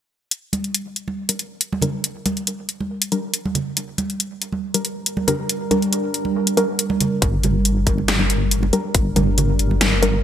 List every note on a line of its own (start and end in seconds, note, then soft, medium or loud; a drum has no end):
0.31 closed hi-hat medium
0.53 closed hi-hat soft
0.53 high conga medium
0.64 closed hi-hat soft
0.74 closed hi-hat medium
0.96 closed hi-hat soft
1.08 high conga medium
1.29 1.42 G3 medium
1.29 1.42 D4 medium
1.29 1.42 A#4 medium
1.29 closed hi-hat medium
1.39 closed hi-hat medium
1.61 closed hi-hat medium
1.73 high conga medium
1.82 1.91 G3 medium
1.82 1.91 D4 medium
1.82 1.91 A#4 loud
1.82 closed hi-hat medium
1.82 low conga medium
2.04 closed hi-hat medium
2.26 3.09 G3 medium
2.26 3.09 D4 medium
2.26 3.09 A#4 medium
2.26 closed hi-hat soft
2.26 high conga medium
2.37 closed hi-hat soft
2.47 closed hi-hat medium
2.69 closed hi-hat medium
2.81 high conga medium
3.02 closed hi-hat medium
3.12 3.21 G3 medium
3.12 3.21 D4 medium
3.12 3.21 A#4 loud
3.12 closed hi-hat medium
3.34 closed hi-hat medium
3.46 high conga medium
3.55 closed hi-hat medium
3.55 low conga medium
3.77 7.19 G3 medium
3.77 7.19 D4 medium
3.77 7.19 A#4 medium
3.77 closed hi-hat medium
3.98 closed hi-hat medium
3.98 high conga medium
4.10 closed hi-hat soft
4.20 closed hi-hat medium
4.42 closed hi-hat medium
4.52 high conga medium
4.74 4.87 G3 medium
4.74 4.87 D4 medium
4.74 4.87 A#4 medium
4.74 closed hi-hat medium
4.85 closed hi-hat medium
5.06 closed hi-hat medium
5.17 high conga medium
5.28 5.37 G3 medium
5.28 5.37 D4 medium
5.28 5.37 A#4 loud
5.28 closed hi-hat medium
5.28 low conga medium
5.49 closed hi-hat medium
5.71 6.55 G3 medium
5.71 6.55 D4 medium
5.71 6.55 A#4 medium
5.71 closed hi-hat soft
5.71 high conga medium
5.82 closed hi-hat soft
5.93 closed hi-hat medium
6.14 closed hi-hat soft
6.25 high conga medium
6.47 closed hi-hat medium
6.57 6.66 G3 medium
6.57 6.66 D4 medium
6.57 6.66 A#4 loud
6.57 closed hi-hat soft
6.79 closed hi-hat medium
6.90 high conga medium
7.01 closed hi-hat medium
7.01 low conga medium
7.22 7.86 G1 medium
7.22 10.23 G3 medium
7.22 10.23 D4 medium
7.22 10.23 A#4 medium
7.22 kick loud
7.22 closed hi-hat medium
7.43 closed hi-hat medium
7.43 high conga medium
7.43 low conga medium
7.65 closed hi-hat medium
7.87 8.72 G1 medium
7.87 kick medium
7.87 closed hi-hat medium
7.98 high conga medium
8.08 snare loud
8.08 closed hi-hat medium
8.19 8.33 G3 medium
8.19 8.33 D4 medium
8.19 8.33 A#4 medium
8.30 closed hi-hat medium
8.51 closed hi-hat medium
8.63 high conga medium
8.73 8.82 G3 loud
8.73 8.82 D4 medium
8.73 8.82 A#4 loud
8.73 closed hi-hat medium
8.95 9.58 G1 loud
8.95 kick loud
8.95 closed hi-hat medium
9.16 10.00 G3 medium
9.16 10.00 D4 medium
9.16 10.00 A#4 medium
9.16 closed hi-hat medium
9.16 high conga medium
9.16 low conga medium
9.38 closed hi-hat medium
9.38 low conga medium
9.59 10.23 G1 medium
9.59 closed hi-hat medium
9.71 high conga medium
9.81 snare loud
9.81 closed hi-hat medium
10.03 10.11 G3 medium
10.03 10.11 D4 medium
10.03 10.11 A#4 loud
10.03 closed hi-hat medium